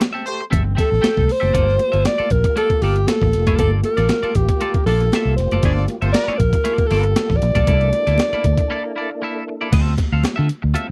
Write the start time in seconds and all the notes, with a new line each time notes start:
0.01 muted clean electric guitar stroke, snare, closed hi-hat, high conga
0.13 C4 G4 A4 E5
0.26 A3 G4 C5, muted clean electric guitar stroke, closed hi-hat
0.40 muted clean electric guitar stroke
0.50 G1 C4 G4 A4 E5, kick, closed hi-hat, muted conga, low conga
0.64 muted clean electric guitar stroke
0.75 C4 G4 A4 E5, kick, snare, closed hi-hat
0.80 A4
0.90 A1, muted clean electric guitar stroke, snare
1.01 C4 G4 A4 G5, muted fingered electric bass stroke, snare, closed hi-hat, high conga
1.17 C2, kick
1.27 muted clean electric guitar stroke, snare, open hi-hat
1.32 C5
1.40 F#1 C4 G4 A4 E5, high conga
1.53 G1 A#3 F4 G4 A4 D5, kick, closed hi-hat, muted conga
1.69 snare
1.78 muted clean electric guitar stroke, closed hi-hat, muted conga
1.92 G1 A#3 F4 A4 E5, closed hi-hat
2.04 D5, muted clean electric guitar stroke, snare, closed hi-hat, high conga
2.18 A#3 F4 A4 D5, muted fingered electric bass stroke, closed hi-hat
2.30 A#1 A#4, muted clean electric guitar stroke, kick, closed hi-hat
2.44 muted clean electric guitar stroke, kick, closed hi-hat
2.56 A#3 F4 A4 D5, closed hi-hat, muted conga
2.70 muted clean electric guitar stroke, kick, closed hi-hat
2.82 G1 A#3 F4 G4 A4 D5, open hi-hat, muted conga
2.96 muted clean electric guitar stroke, closed hi-hat
3.07 A4, muted clean electric guitar stroke, snare, closed hi-hat, high conga
3.22 A1, muted clean electric guitar stroke, kick, snare
3.33 F1, snare, closed hi-hat
3.47 F#1 A#3 F4 A4 D5, kick, closed hi-hat, high conga
3.58 G1 A#3 F4 A4 D5, kick, closed hi-hat, muted conga
3.83 A#4, muted clean electric guitar stroke, closed hi-hat, muted conga
3.97 A1 A#3 F4 A4 D5, snare, closed hi-hat
4.09 muted clean electric guitar stroke, snare, closed hi-hat, high conga
4.23 A#3 F4 A4 D5, muted fingered electric bass stroke, closed hi-hat
4.35 A1 G4, kick, closed hi-hat
4.49 muted clean electric guitar stroke, kick, closed hi-hat
4.60 A#3 F4 G4 A4 D5, closed hi-hat, muted conga
4.74 muted clean electric guitar stroke, kick, closed hi-hat
4.86 A#1 A#3 F4 A4 D5, snare, open hi-hat, muted conga
5.00 muted clean electric guitar stroke, snare, closed hi-hat
5.12 A#3 F4 A4 E5, snare, closed hi-hat, high conga
5.25 C2
5.37 F1 C5, muted clean electric guitar stroke, snare, closed hi-hat
5.51 F#1 A#3 F4 A4 D5, closed hi-hat, high conga
5.63 G1 A#3 D4 F4 A4 D5, kick, closed hi-hat, muted conga
5.77 snare
5.88 muted clean electric guitar stroke, closed hi-hat, muted conga
6.02 G1 A#3 C4 F4 A4 C5 E5, closed hi-hat
6.12 A#3 A#4 D5, muted clean electric guitar stroke, snare, closed hi-hat, high conga
6.28 A#3 F4 A4 D5, muted fingered electric bass stroke, closed hi-hat
6.38 A#1 A#4, muted clean electric guitar stroke, kick, closed hi-hat
6.53 muted clean electric guitar stroke, kick, closed hi-hat
6.64 A#3 F4 A4 D5, closed hi-hat, muted conga
6.78 muted clean electric guitar stroke, kick, closed hi-hat
6.87 A#3 A4, open hi-hat
6.91 G1 A3 F4 A4 D5, muted conga
7.03 muted clean electric guitar stroke, closed hi-hat
7.16 muted clean electric guitar stroke, snare, closed hi-hat, high conga
7.30 A1, muted clean electric guitar stroke, kick, snare
7.37 D5
7.42 A#1, snare, closed hi-hat
7.55 B1 A#3 F4 A4 D5, kick, closed hi-hat, high conga
7.65 C2 A#3 D4 E4 A4 D5, kick, closed hi-hat, muted conga
7.81 closed hi-hat
7.93 muted clean electric guitar stroke, closed hi-hat, muted conga
8.07 D2 A#3 E4 A4 D5, snare, closed hi-hat
8.18 snare, closed hi-hat, high conga
8.33 A#3 E4 A4 D5, muted fingered electric bass stroke, closed hi-hat
8.44 D2, kick, closed hi-hat
8.57 muted clean electric guitar stroke, kick, closed hi-hat
8.70 A#3 E4 A4 D5
8.84 muted clean electric guitar stroke
8.96 A#3 E4 A4 D5
9.11 muted clean electric guitar stroke
9.22 A#3 E4 A4 E5
9.48 muted clean electric guitar stroke
9.61 A#3 E4 A4 D5
9.72 D2 C4 F4 A4 E5, kick, closed hi-hat, crash, muted conga
9.87 snare
9.98 muted clean electric guitar stroke, kick, closed hi-hat, muted conga
10.12 D2 C4 F4 A4 F5
10.24 muted clean electric guitar stroke, muted fingered electric bass stroke, snare, closed hi-hat, high conga
10.36 D3 C4 F4 A4 E5
10.49 muted clean electric guitar stroke, closed hi-hat
10.62 D2, muted clean electric guitar stroke
10.74 C4 F4 A4 E5, closed hi-hat, muted conga
10.88 muted clean electric guitar stroke